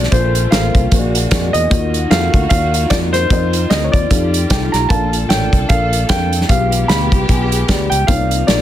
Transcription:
Already playing: A3 C4 D4 F#4 D5
0.03 snare
0.11 A#1 A#2 A#3 C4 F4 A4 C5, kick, closed hi-hat
0.35 closed hi-hat
0.51 A1 A#3 F4 A4 C5 F5, snare, closed hi-hat
0.75 C2, kick, closed hi-hat
0.91 A#1 A#2 G#3 A#3 D4 F#4 G#4 C5, kick, closed hi-hat
0.98 D5
1.15 closed hi-hat
1.30 F2 A#3 F#4 G#4 D5, kick, snare, closed hi-hat
1.53 E2 D#5, closed hi-hat
1.70 D#2 D#3 A#3 D#4 F4 F#4 D#5, kick, closed hi-hat
1.94 closed hi-hat
2.10 F2 A#3 F4 F#4 A4 F5, snare, closed hi-hat
2.34 D2, kick, closed hi-hat
2.49 D#2 A#3 F4 F#4 D5 F5, kick, closed hi-hat
2.74 closed hi-hat
2.90 F2 A#3 F4 F#4 D5 D#5, kick, snare, closed hi-hat
3.13 C5, snare, closed hi-hat
3.30 F2 C4 F4 A#4 D#5, kick, closed hi-hat
3.53 closed hi-hat
3.70 D2 C4 F4 A4 D#5, snare, closed hi-hat
3.76 A#4
3.84 C#5
3.92 D#2 D5, kick, closed hi-hat
4.10 F2 A3 D#4 G4 A4 F5, kick, closed hi-hat
4.34 closed hi-hat
4.50 C2 D#4 G4 A4 G5, kick, snare, closed hi-hat
4.72 B1 A#5, snare, closed hi-hat
4.89 A#1 A#2 A#3 D4 A4 A#4 F5 A5, kick, closed hi-hat
5.13 closed hi-hat
5.29 A1 D4 A4 A#4 C#5 G5, snare, closed hi-hat
5.35 D5
5.53 C2, kick, closed hi-hat
5.69 A#1 D4 A4 A#4 F5, kick, closed hi-hat
5.93 closed hi-hat
6.09 F2 D4 A4 A#4 F5 G5, kick, snare, closed hi-hat
6.33 closed hi-hat
6.41 snare
6.49 B1 B2 G#3 B3 F4 G4 G#4 F5, kick, closed hi-hat
6.72 closed hi-hat
6.88 D2 B3 G4 G#4 F5 B5, snare, closed hi-hat
7.12 C2, kick, closed hi-hat
7.28 B1 B3 G4 G#4 G#5, kick, closed hi-hat
7.52 closed hi-hat
7.68 D2 B3 G4 G#4 D5, kick, snare, closed hi-hat
7.90 C#2 G5, closed hi-hat
8.07 C2 C3 F3 A#3 C4 D#4 F4 C#5 F5, kick, closed hi-hat
8.14 D5
8.31 closed hi-hat
8.47 A#1 A#3 D4 F4 D5, snare, closed hi-hat
8.53 D#4

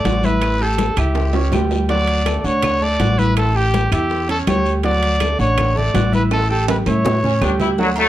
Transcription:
Already playing: D5
0.05 A1 F#4 F#5 F#6, high bongo, low bongo, high conga, high timbale, low timbale, short guiro
0.23 E4 B4 E5 E6, high conga, short guiro
0.41 high bongo, high timbale, long guiro, claves
0.60 G4 A4 G5 G6, high bongo, high conga
0.78 high bongo, high conga, high timbale, low timbale, short guiro
0.97 C#2 E4 G4 E5 E6, high timbale, short guiro, claves
1.15 high bongo, high conga, high timbale, long guiro
1.33 C#4 C#5 C#6, high bongo, high conga, low timbale
1.52 D2 G3 G4 G5, high bongo, low bongo, high conga, low timbale, short guiro, claves
1.71 high bongo, high conga, low timbale, short guiro
1.89 F#3 F#4 D5 F#5, high bongo, high conga, high timbale, long guiro
2.07 high conga, high timbale
2.26 A3 A4 A5, high bongo, high conga, high timbale, low timbale, short guiro, claves
2.39 D5
2.44 D2 D4 C#5 F#5, high conga, short guiro
2.62 high bongo, high conga, low conga, high timbale, long guiro, claves
2.81 A3 A4 D5 A5, high conga
3.00 A1 F#4 F#5 F#6, high bongo, low bongo, high conga, high timbale, low timbale, short guiro
3.18 E4 B4 E5 E6, high conga, short guiro
3.37 A4, high bongo, high timbale, long guiro, claves
3.55 G4 G5 G6, high bongo, high conga
3.74 high bongo, high conga, high timbale, low timbale, short guiro
3.92 E2 E4 G4 E5 E6, high timbale, short guiro, claves
4.10 high bongo, high conga, long guiro
4.28 C#4 A4 C#5 C#6, high bongo, high conga, high timbale
4.47 D2 G3 G4 C#5 G5, high bongo, low bongo, high conga, high timbale, low timbale, short guiro, claves
4.66 high bongo, high conga, short guiro
4.83 F#3 F#4 D5 F#5, high bongo, high conga, high timbale, long guiro
5.03 high conga, high timbale
5.20 A3 A4 A5, high bongo, high conga, high timbale, low timbale, short guiro, claves
5.39 A1 D4 C#5 F#5, high conga, short guiro
5.58 high bongo, high conga, low conga, high timbale, long guiro, claves
5.75 A3 A4 D5 A5, high conga, low conga
5.94 A1 F#4 F#5 F#6, high bongo, low bongo, high conga, high timbale, low timbale, short guiro
6.12 E4 B4 E5 E6, high conga, short guiro
6.31 A4, high bongo, high conga, high timbale, long guiro, claves
6.49 G4 A4 G5 G6, high bongo, high conga
6.68 B4, high bongo, high conga, high timbale, short guiro
6.86 A2 E4 C#5 E5 E6, high conga, high timbale, short guiro, claves
7.05 high bongo, low conga, low timbale, long guiro
7.23 C#4 C#5 C#6, high bongo, low conga
7.42 D2 G3 D4 G4 G5, high bongo, low bongo, low conga, short guiro, claves
7.60 E4, high bongo, low conga, low timbale, short guiro
7.78 D3 F#3 F#4 F#5, cowbell, high conga, long guiro
7.96 F#3 A3 A4 A5, cowbell, high conga, low agogo

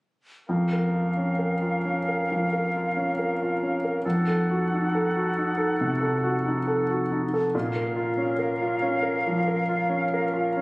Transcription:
0.48 F2 C#4 A#4 F5
0.73 A#4
0.94 F4
1.17 C#4
1.39 A#4
1.62 F4
1.85 C#4
2.08 A#4
2.32 F3
2.53 A#4
2.76 F4
2.97 C#4
3.19 A#4
3.42 F4
3.63 C#4
3.85 A#4
4.04 F2 D#4 A4 F#5
4.27 A4
4.50 F#4
4.74 D#4
4.95 A4
5.16 F#4
5.38 D#4
5.58 A4
5.81 C3
6.01 A4
6.23 F#4
6.47 D#4
6.67 A4
6.90 F#4
7.11 D#4
7.34 A4
7.54 A#2 C#4 A#4 F5
7.76 A#4
7.96 F4
8.17 C#4
8.39 A#4
8.61 F4
8.82 C#4
9.03 A#4
9.27 F3
9.48 A#4
9.69 F4
9.89 C#4
10.14 A#4
10.34 F4
10.57 C#4

